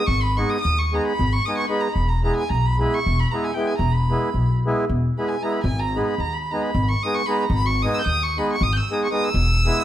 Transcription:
0.07 upright bass G#1, violin C#6
0.22 violin B5
0.37 accordion G#3 B3 D#4 G#4, violin C#6
0.50 violin D#6
0.61 upright bass D#2, violin D#6
0.79 violin C#6
0.93 accordion G#3 B3 D#4 G#4, violin A#5
1.06 violin B5
1.19 upright bass G#1
1.33 violin C#6
1.45 accordion G#3 B3 D#4 G#4, violin D#6
1.58 violin C#6
1.68 accordion G#3 B3 D#4 G#4, violin B5
1.81 violin A#5
1.93 upright bass E1, violin B5
2.09 violin A#5
2.23 accordion G#3 B3 E4 G#4, violin A#5
2.36 violin G#5
2.49 upright bass B1, violin A#5
2.66 violin B5
2.78 accordion G#3 B3 E4 G#4, violin B5
2.94 violin C#6
3.06 upright bass E1
3.20 violin B5
3.31 accordion G#3 B3 E4 G#4, violin A#5
3.44 violin G#5
3.54 accordion G#3 B3 E4 G#4, violin G5
3.67 violin G#5
3.78 upright bass E1, violin A#5
3.92 violin B5
4.09 accordion G#3 B3 E4 G#4
4.34 upright bass B1
4.65 accordion G#3 B3 E4 G#4
4.89 upright bass E1
5.18 accordion G#3 B3 E4 G#4, violin B5
5.28 violin G#5
5.42 accordion G#3 B3 E4 G#4, violin A#5
5.52 violin B5
5.64 upright bass G#1, violin G#5
5.79 violin A#5
5.96 accordion G#3 B3 D#4 G#4, violin B5
6.07 violin B5
6.18 upright bass D#2, violin A#5
6.33 violin B5
6.51 accordion G#3 B3 D#4 G#4, violin A#5
6.62 violin B5
6.75 upright bass G#1
6.89 violin C#6
7.03 accordion G#3 B3 D#4 G#4, violin D#6
7.14 violin C#6
7.26 accordion G#3 B3 D#4 G#4, violin B5
7.30 violin A#5 B5
7.41 violin A#5
7.50 upright bass G#1, violin B5
7.66 violin C#6
7.82 accordion G#3 B3 D#4 G#4, violin D#6
7.94 violin E6
7.99 violin E6 G6
8.06 upright bass D#2, violin D#6
8.23 violin C#6
8.37 accordion G#3 B3 D#4 G#4, violin B5
8.53 violin C#6
8.61 upright bass G#1, violin D#6
8.72 violin G6
8.77 violin E6
8.91 accordion G#3 B3 D#4 G#4, violin D#6
9.04 violin C#6
9.11 accordion G#3 B3 D#4 G#4, violin D#6
9.24 violin E6
9.34 upright bass E1
9.65 accordion G#3 B3 E4 G#4

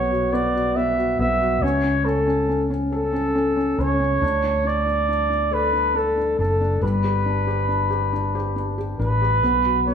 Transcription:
Already playing: fretless electric bass B1, felt piano B3 F#4, flugelhorn C#5
0.11 felt piano F#4
0.33 felt piano B3, flugelhorn D5
0.54 felt piano F#4
0.76 felt piano B3, flugelhorn E5
0.98 felt piano F#4
1.19 fretless electric bass B1, felt piano B3, flugelhorn E5
1.41 felt piano F#4
1.62 fretless electric bass C#2, felt piano C#4, flugelhorn C#5
1.84 felt piano C#4
2.05 felt piano C#4, flugelhorn A4
2.27 felt piano C#4
2.49 felt piano C#4
2.70 felt piano C#4
2.92 felt piano A4, flugelhorn A4
3.13 felt piano C#4
3.35 felt piano C#4
3.57 felt piano C#4
3.78 fretless electric bass C#2, felt piano C#4, flugelhorn C#5
4.00 felt piano C#4
4.21 fretless electric bass D2, felt piano D4
4.43 felt piano D4
4.64 felt piano D4, flugelhorn D5
4.86 felt piano D4
5.08 felt piano D4
5.29 felt piano D4
5.51 felt piano A4, flugelhorn B4
5.73 felt piano D4
5.95 felt piano D4, flugelhorn A4
6.17 felt piano D4
6.39 fretless electric bass F#1, felt piano D4, flugelhorn A4
6.61 felt piano D4
6.81 fretless electric bass G1, felt piano G3, flugelhorn B4
7.04 felt piano G4
7.26 felt piano D4
7.47 felt piano G4
7.68 felt piano D4
7.90 felt piano G4
8.13 felt piano D4
8.35 felt piano G4
8.56 felt piano D4
8.78 felt piano G4
8.99 fretless electric bass A1, felt piano D4, flugelhorn B4
9.22 felt piano G4
9.43 fretless electric bass B1, felt piano B3
9.65 felt piano F#4
9.87 felt piano B3, flugelhorn D5

